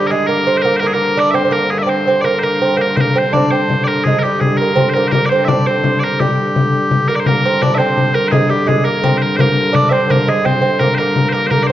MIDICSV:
0, 0, Header, 1, 5, 480
1, 0, Start_track
1, 0, Tempo, 356083
1, 1115, Time_signature, 6, 3, 24, 8
1, 15799, End_track
2, 0, Start_track
2, 0, Title_t, "Bagpipes"
2, 0, Program_c, 0, 109
2, 92, Note_on_c, 0, 70, 70
2, 149, Note_off_c, 0, 70, 0
2, 149, Note_on_c, 0, 68, 70
2, 364, Note_off_c, 0, 68, 0
2, 364, Note_on_c, 0, 70, 88
2, 770, Note_off_c, 0, 70, 0
2, 770, Note_on_c, 0, 72, 88
2, 830, Note_off_c, 0, 72, 0
2, 830, Note_on_c, 0, 70, 88
2, 1028, Note_off_c, 0, 70, 0
2, 1028, Note_on_c, 0, 72, 91
2, 1072, Note_off_c, 0, 72, 0
2, 1072, Note_on_c, 0, 70, 91
2, 1171, Note_off_c, 0, 70, 0
2, 1171, Note_on_c, 0, 68, 70
2, 1262, Note_off_c, 0, 68, 0
2, 1262, Note_on_c, 0, 70, 89
2, 1607, Note_off_c, 0, 70, 0
2, 1607, Note_on_c, 0, 74, 83
2, 1760, Note_off_c, 0, 74, 0
2, 1760, Note_on_c, 0, 76, 88
2, 1816, Note_off_c, 0, 76, 0
2, 1816, Note_on_c, 0, 72, 88
2, 2052, Note_off_c, 0, 72, 0
2, 2052, Note_on_c, 0, 70, 78
2, 2298, Note_off_c, 0, 70, 0
2, 2298, Note_on_c, 0, 68, 81
2, 2405, Note_off_c, 0, 68, 0
2, 2405, Note_on_c, 0, 76, 62
2, 2459, Note_off_c, 0, 76, 0
2, 2459, Note_on_c, 0, 74, 62
2, 2551, Note_off_c, 0, 74, 0
2, 2551, Note_on_c, 0, 72, 88
2, 2983, Note_off_c, 0, 72, 0
2, 2983, Note_on_c, 0, 74, 75
2, 3027, Note_off_c, 0, 74, 0
2, 3027, Note_on_c, 0, 70, 75
2, 3221, Note_off_c, 0, 70, 0
2, 3221, Note_on_c, 0, 72, 88
2, 3278, Note_off_c, 0, 72, 0
2, 3278, Note_on_c, 0, 70, 88
2, 3732, Note_off_c, 0, 70, 0
2, 3732, Note_on_c, 0, 72, 80
2, 3790, Note_off_c, 0, 72, 0
2, 3790, Note_on_c, 0, 70, 80
2, 3994, Note_off_c, 0, 70, 0
2, 3994, Note_on_c, 0, 72, 78
2, 4048, Note_on_c, 0, 70, 78
2, 4049, Note_off_c, 0, 72, 0
2, 4283, Note_off_c, 0, 70, 0
2, 4283, Note_on_c, 0, 72, 72
2, 4494, Note_off_c, 0, 72, 0
2, 4494, Note_on_c, 0, 74, 78
2, 4731, Note_off_c, 0, 74, 0
2, 4731, Note_on_c, 0, 72, 86
2, 5177, Note_off_c, 0, 72, 0
2, 5177, Note_on_c, 0, 74, 80
2, 5222, Note_off_c, 0, 74, 0
2, 5222, Note_on_c, 0, 70, 80
2, 5447, Note_off_c, 0, 70, 0
2, 5447, Note_on_c, 0, 68, 77
2, 5648, Note_off_c, 0, 68, 0
2, 5648, Note_on_c, 0, 70, 78
2, 5701, Note_off_c, 0, 70, 0
2, 5701, Note_on_c, 0, 67, 78
2, 5934, Note_off_c, 0, 67, 0
2, 5934, Note_on_c, 0, 68, 70
2, 6165, Note_off_c, 0, 68, 0
2, 6165, Note_on_c, 0, 70, 81
2, 6593, Note_off_c, 0, 70, 0
2, 6593, Note_on_c, 0, 72, 74
2, 6651, Note_off_c, 0, 72, 0
2, 6651, Note_on_c, 0, 70, 74
2, 6841, Note_off_c, 0, 70, 0
2, 6841, Note_on_c, 0, 72, 84
2, 6891, Note_off_c, 0, 72, 0
2, 6891, Note_on_c, 0, 70, 84
2, 7085, Note_off_c, 0, 70, 0
2, 7086, Note_on_c, 0, 74, 78
2, 7135, Note_off_c, 0, 74, 0
2, 7135, Note_on_c, 0, 72, 78
2, 7341, Note_off_c, 0, 72, 0
2, 7341, Note_on_c, 0, 76, 85
2, 7385, Note_off_c, 0, 76, 0
2, 7385, Note_on_c, 0, 74, 85
2, 7639, Note_off_c, 0, 74, 0
2, 7639, Note_on_c, 0, 72, 85
2, 8084, Note_off_c, 0, 72, 0
2, 8084, Note_on_c, 0, 74, 76
2, 8135, Note_off_c, 0, 74, 0
2, 8135, Note_on_c, 0, 70, 76
2, 8355, Note_off_c, 0, 70, 0
2, 8355, Note_on_c, 0, 67, 69
2, 9543, Note_off_c, 0, 67, 0
2, 9543, Note_on_c, 0, 70, 80
2, 9643, Note_off_c, 0, 70, 0
2, 9643, Note_on_c, 0, 74, 67
2, 9704, Note_off_c, 0, 74, 0
2, 9704, Note_on_c, 0, 72, 67
2, 9791, Note_off_c, 0, 72, 0
2, 9791, Note_on_c, 0, 70, 87
2, 10270, Note_off_c, 0, 70, 0
2, 10270, Note_on_c, 0, 74, 93
2, 10439, Note_off_c, 0, 74, 0
2, 10439, Note_on_c, 0, 76, 86
2, 10485, Note_off_c, 0, 76, 0
2, 10485, Note_on_c, 0, 72, 86
2, 10976, Note_off_c, 0, 72, 0
2, 10976, Note_on_c, 0, 70, 92
2, 11158, Note_off_c, 0, 70, 0
2, 11158, Note_on_c, 0, 72, 83
2, 11207, Note_off_c, 0, 72, 0
2, 11207, Note_on_c, 0, 68, 83
2, 11455, Note_off_c, 0, 68, 0
2, 11455, Note_on_c, 0, 67, 81
2, 11696, Note_off_c, 0, 67, 0
2, 11696, Note_on_c, 0, 68, 72
2, 11925, Note_off_c, 0, 68, 0
2, 11925, Note_on_c, 0, 70, 93
2, 12367, Note_off_c, 0, 70, 0
2, 12367, Note_on_c, 0, 72, 83
2, 12425, Note_off_c, 0, 72, 0
2, 12425, Note_on_c, 0, 70, 83
2, 12620, Note_off_c, 0, 70, 0
2, 12620, Note_on_c, 0, 72, 98
2, 12673, Note_off_c, 0, 72, 0
2, 12673, Note_on_c, 0, 70, 98
2, 13143, Note_off_c, 0, 70, 0
2, 13143, Note_on_c, 0, 74, 87
2, 13333, Note_off_c, 0, 74, 0
2, 13333, Note_on_c, 0, 76, 87
2, 13378, Note_off_c, 0, 76, 0
2, 13378, Note_on_c, 0, 72, 87
2, 13620, Note_off_c, 0, 72, 0
2, 13620, Note_on_c, 0, 70, 76
2, 13870, Note_off_c, 0, 70, 0
2, 13870, Note_on_c, 0, 68, 88
2, 14093, Note_off_c, 0, 68, 0
2, 14093, Note_on_c, 0, 72, 95
2, 14548, Note_off_c, 0, 72, 0
2, 14548, Note_on_c, 0, 70, 85
2, 14752, Note_off_c, 0, 70, 0
2, 14752, Note_on_c, 0, 72, 85
2, 14798, Note_off_c, 0, 72, 0
2, 14798, Note_on_c, 0, 70, 85
2, 15215, Note_off_c, 0, 70, 0
2, 15215, Note_on_c, 0, 72, 81
2, 15264, Note_off_c, 0, 72, 0
2, 15264, Note_on_c, 0, 70, 81
2, 15454, Note_off_c, 0, 70, 0
2, 15454, Note_on_c, 0, 72, 87
2, 15508, Note_off_c, 0, 72, 0
2, 15508, Note_on_c, 0, 70, 87
2, 15676, Note_off_c, 0, 70, 0
2, 15676, Note_on_c, 0, 74, 83
2, 15731, Note_on_c, 0, 72, 83
2, 15732, Note_off_c, 0, 74, 0
2, 15799, Note_off_c, 0, 72, 0
2, 15799, End_track
3, 0, Start_track
3, 0, Title_t, "Lute"
3, 0, Program_c, 1, 24
3, 0, Note_on_c, 1, 55, 75
3, 147, Note_off_c, 1, 55, 0
3, 153, Note_on_c, 1, 56, 74
3, 388, Note_on_c, 1, 58, 72
3, 399, Note_off_c, 1, 56, 0
3, 626, Note_off_c, 1, 58, 0
3, 631, Note_on_c, 1, 60, 76
3, 871, Note_off_c, 1, 60, 0
3, 877, Note_on_c, 1, 58, 79
3, 1102, Note_off_c, 1, 58, 0
3, 1118, Note_on_c, 1, 58, 75
3, 1255, Note_off_c, 1, 58, 0
3, 1272, Note_on_c, 1, 58, 78
3, 1581, Note_on_c, 1, 62, 83
3, 1594, Note_off_c, 1, 58, 0
3, 1806, Note_on_c, 1, 60, 80
3, 1838, Note_off_c, 1, 62, 0
3, 1938, Note_off_c, 1, 60, 0
3, 1954, Note_on_c, 1, 60, 58
3, 2029, Note_off_c, 1, 60, 0
3, 2034, Note_on_c, 1, 58, 78
3, 2504, Note_off_c, 1, 58, 0
3, 2513, Note_on_c, 1, 60, 67
3, 2781, Note_off_c, 1, 60, 0
3, 2797, Note_on_c, 1, 60, 77
3, 3016, Note_off_c, 1, 60, 0
3, 3021, Note_on_c, 1, 58, 76
3, 3256, Note_off_c, 1, 58, 0
3, 3281, Note_on_c, 1, 58, 73
3, 3521, Note_off_c, 1, 58, 0
3, 3527, Note_on_c, 1, 60, 76
3, 3734, Note_off_c, 1, 60, 0
3, 3739, Note_on_c, 1, 58, 68
3, 3989, Note_off_c, 1, 58, 0
3, 4005, Note_on_c, 1, 58, 67
3, 4249, Note_off_c, 1, 58, 0
3, 4254, Note_on_c, 1, 60, 67
3, 4484, Note_on_c, 1, 62, 84
3, 4499, Note_off_c, 1, 60, 0
3, 4734, Note_off_c, 1, 62, 0
3, 4738, Note_on_c, 1, 60, 73
3, 5477, Note_off_c, 1, 60, 0
3, 5487, Note_on_c, 1, 56, 66
3, 5694, Note_off_c, 1, 56, 0
3, 5732, Note_on_c, 1, 55, 70
3, 6207, Note_off_c, 1, 55, 0
3, 6223, Note_on_c, 1, 58, 67
3, 6405, Note_off_c, 1, 58, 0
3, 6410, Note_on_c, 1, 60, 73
3, 6659, Note_off_c, 1, 60, 0
3, 6694, Note_on_c, 1, 58, 76
3, 6921, Note_off_c, 1, 58, 0
3, 6936, Note_on_c, 1, 58, 66
3, 7161, Note_off_c, 1, 58, 0
3, 7167, Note_on_c, 1, 60, 75
3, 7392, Note_on_c, 1, 62, 77
3, 7397, Note_off_c, 1, 60, 0
3, 7607, Note_off_c, 1, 62, 0
3, 7643, Note_on_c, 1, 60, 71
3, 8370, Note_off_c, 1, 60, 0
3, 8378, Note_on_c, 1, 55, 58
3, 9262, Note_off_c, 1, 55, 0
3, 9560, Note_on_c, 1, 58, 72
3, 9794, Note_off_c, 1, 58, 0
3, 9813, Note_on_c, 1, 58, 77
3, 10040, Note_off_c, 1, 58, 0
3, 10050, Note_on_c, 1, 60, 76
3, 10278, Note_off_c, 1, 60, 0
3, 10278, Note_on_c, 1, 62, 88
3, 10418, Note_off_c, 1, 62, 0
3, 10442, Note_on_c, 1, 62, 67
3, 10498, Note_on_c, 1, 60, 81
3, 10513, Note_off_c, 1, 62, 0
3, 10981, Note_off_c, 1, 60, 0
3, 10986, Note_on_c, 1, 58, 70
3, 11225, Note_off_c, 1, 58, 0
3, 11233, Note_on_c, 1, 56, 69
3, 11448, Note_off_c, 1, 56, 0
3, 11454, Note_on_c, 1, 55, 73
3, 11675, Note_off_c, 1, 55, 0
3, 11680, Note_on_c, 1, 56, 76
3, 11927, Note_on_c, 1, 58, 77
3, 11932, Note_off_c, 1, 56, 0
3, 12172, Note_off_c, 1, 58, 0
3, 12178, Note_on_c, 1, 60, 90
3, 12661, Note_off_c, 1, 60, 0
3, 12667, Note_on_c, 1, 58, 72
3, 13116, Note_on_c, 1, 62, 85
3, 13149, Note_off_c, 1, 58, 0
3, 13358, Note_on_c, 1, 60, 78
3, 13367, Note_off_c, 1, 62, 0
3, 13607, Note_off_c, 1, 60, 0
3, 13613, Note_on_c, 1, 58, 78
3, 13854, Note_off_c, 1, 58, 0
3, 13858, Note_on_c, 1, 56, 74
3, 14084, Note_on_c, 1, 60, 73
3, 14096, Note_off_c, 1, 56, 0
3, 14295, Note_off_c, 1, 60, 0
3, 14311, Note_on_c, 1, 60, 78
3, 14562, Note_off_c, 1, 60, 0
3, 14569, Note_on_c, 1, 58, 78
3, 14806, Note_off_c, 1, 58, 0
3, 14823, Note_on_c, 1, 58, 71
3, 15274, Note_off_c, 1, 58, 0
3, 15290, Note_on_c, 1, 58, 76
3, 15502, Note_off_c, 1, 58, 0
3, 15519, Note_on_c, 1, 58, 71
3, 15762, Note_off_c, 1, 58, 0
3, 15799, End_track
4, 0, Start_track
4, 0, Title_t, "Hurdy-gurdy"
4, 0, Program_c, 2, 110
4, 0, Note_on_c, 2, 43, 58
4, 0, Note_on_c, 2, 50, 64
4, 4034, Note_off_c, 2, 43, 0
4, 4034, Note_on_c, 2, 43, 59
4, 4041, Note_off_c, 2, 50, 0
4, 4041, Note_on_c, 2, 50, 64
4, 9770, Note_off_c, 2, 43, 0
4, 9770, Note_on_c, 2, 43, 66
4, 9786, Note_off_c, 2, 50, 0
4, 9786, Note_on_c, 2, 50, 68
4, 15506, Note_off_c, 2, 50, 0
4, 15506, Note_on_c, 2, 50, 64
4, 15509, Note_off_c, 2, 43, 0
4, 15509, Note_on_c, 2, 43, 65
4, 15799, Note_off_c, 2, 43, 0
4, 15799, Note_off_c, 2, 50, 0
4, 15799, End_track
5, 0, Start_track
5, 0, Title_t, "Frame drum"
5, 4003, Note_on_c, 9, 64, 77
5, 4138, Note_off_c, 9, 64, 0
5, 4499, Note_on_c, 9, 64, 78
5, 4634, Note_off_c, 9, 64, 0
5, 4984, Note_on_c, 9, 64, 67
5, 5118, Note_off_c, 9, 64, 0
5, 5467, Note_on_c, 9, 64, 64
5, 5601, Note_off_c, 9, 64, 0
5, 5949, Note_on_c, 9, 64, 69
5, 6083, Note_off_c, 9, 64, 0
5, 6428, Note_on_c, 9, 64, 79
5, 6563, Note_off_c, 9, 64, 0
5, 6905, Note_on_c, 9, 64, 83
5, 7040, Note_off_c, 9, 64, 0
5, 7393, Note_on_c, 9, 64, 84
5, 7527, Note_off_c, 9, 64, 0
5, 7871, Note_on_c, 9, 64, 76
5, 8005, Note_off_c, 9, 64, 0
5, 8359, Note_on_c, 9, 64, 82
5, 8494, Note_off_c, 9, 64, 0
5, 8607, Note_on_c, 9, 64, 29
5, 8742, Note_off_c, 9, 64, 0
5, 8842, Note_on_c, 9, 64, 82
5, 8977, Note_off_c, 9, 64, 0
5, 9315, Note_on_c, 9, 64, 72
5, 9450, Note_off_c, 9, 64, 0
5, 9559, Note_on_c, 9, 64, 26
5, 9693, Note_off_c, 9, 64, 0
5, 9788, Note_on_c, 9, 64, 73
5, 9923, Note_off_c, 9, 64, 0
5, 10279, Note_on_c, 9, 64, 75
5, 10414, Note_off_c, 9, 64, 0
5, 10749, Note_on_c, 9, 64, 68
5, 10884, Note_off_c, 9, 64, 0
5, 11222, Note_on_c, 9, 64, 86
5, 11357, Note_off_c, 9, 64, 0
5, 11710, Note_on_c, 9, 64, 80
5, 11844, Note_off_c, 9, 64, 0
5, 12183, Note_on_c, 9, 64, 81
5, 12318, Note_off_c, 9, 64, 0
5, 12657, Note_on_c, 9, 64, 83
5, 12792, Note_off_c, 9, 64, 0
5, 13137, Note_on_c, 9, 64, 80
5, 13272, Note_off_c, 9, 64, 0
5, 13619, Note_on_c, 9, 64, 73
5, 13754, Note_off_c, 9, 64, 0
5, 14099, Note_on_c, 9, 64, 68
5, 14234, Note_off_c, 9, 64, 0
5, 14568, Note_on_c, 9, 64, 72
5, 14703, Note_off_c, 9, 64, 0
5, 15041, Note_on_c, 9, 64, 67
5, 15176, Note_off_c, 9, 64, 0
5, 15286, Note_on_c, 9, 64, 24
5, 15421, Note_off_c, 9, 64, 0
5, 15517, Note_on_c, 9, 64, 66
5, 15652, Note_off_c, 9, 64, 0
5, 15799, End_track
0, 0, End_of_file